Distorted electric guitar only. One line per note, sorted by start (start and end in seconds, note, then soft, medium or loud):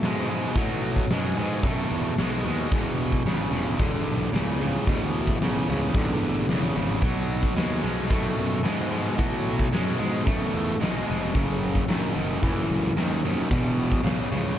0.03 0.27 B2 medium
0.03 0.27 G#3 medium
0.29 0.53 B2 medium
0.29 0.54 G#3 medium
0.57 1.05 B2 medium
0.57 1.05 F#3 medium
1.11 1.35 B2 medium
1.11 1.35 G#3 medium
1.38 1.62 B2 medium
1.38 1.62 G#3 medium
1.64 2.13 B2 medium
1.64 2.13 A3 medium
2.19 2.43 B2 medium
2.19 2.43 G#3 medium
2.45 2.70 B2 medium
2.45 2.70 G#3 medium
2.72 3.21 E2 medium
2.72 3.21 B2 medium
3.26 3.51 E2 medium
3.26 3.51 C#3 medium
3.53 3.77 E2 medium
3.53 3.77 C#3 medium
3.80 4.29 E2 medium
3.80 4.29 D3 medium
4.33 4.58 E2 medium
4.33 4.59 C#3 medium
4.61 4.85 E2 medium
4.61 4.86 C#3 medium
4.88 5.37 E2 medium
4.88 5.37 B2 medium
5.42 5.66 E2 medium
5.42 5.67 C#3 medium
5.69 5.93 E2 medium
5.69 5.94 C#3 medium
5.96 6.45 E2 medium
5.96 6.45 D3 medium
6.51 6.75 E2 medium
6.51 6.75 C#3 loud
6.76 7.01 E2 medium
6.76 7.02 C#3 medium
7.04 7.53 B2 medium
7.04 7.53 F#3 medium
7.57 7.82 B2 medium
7.57 7.82 G#3 medium
7.84 8.09 B2 medium
7.84 8.09 G#3 medium
8.10 8.59 B2 medium
8.10 8.60 A3 medium
8.63 8.89 B2 medium
8.63 8.89 G#3 medium
8.91 9.16 B2 medium
8.91 9.16 G#3 medium
9.18 9.67 B2 medium
9.18 9.67 F#3 medium
9.72 9.97 B2 medium
9.72 9.97 G#3 medium
9.98 10.24 B2 medium
9.98 10.24 G#3 medium
10.26 10.75 B2 medium
10.26 10.76 A3 medium
10.80 11.05 B2 medium
10.80 11.05 G#3 medium
11.06 11.31 B2 medium
11.06 11.32 G#3 medium
11.33 11.82 F#2 medium
11.33 11.83 C#3 medium
11.88 12.13 F#2 medium
11.88 12.13 D#3 medium
12.14 12.39 F#2 medium
12.14 12.39 D#3 medium
12.43 12.91 F#2 medium
12.43 12.91 E3 medium
12.97 13.21 F#2 medium
12.97 13.21 D#3 medium
13.24 13.48 F#2 medium
13.24 13.48 D#3 medium
13.51 13.99 E2 medium
13.51 13.99 B2 medium
14.03 14.28 E2 medium
14.03 14.28 C#3 medium
14.31 14.55 E2 medium
14.31 14.55 C#3 medium